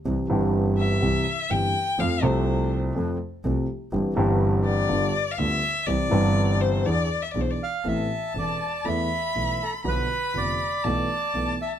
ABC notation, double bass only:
X:1
M:4/4
L:1/8
Q:1/4=123
K:C
V:1 name="Double bass" clef=bass
C,, G,,,3 C,, z G,,, z | F,, C,,3 F,, z C,, z | G,,, G,,,3 G,,, z D,, z | C,, G,,,3 E,, z B,,, z |
[K:Am] A,,, z E,,, z E,, z B,,, z | B,,, z F,,, z B,,, z B,,, z |]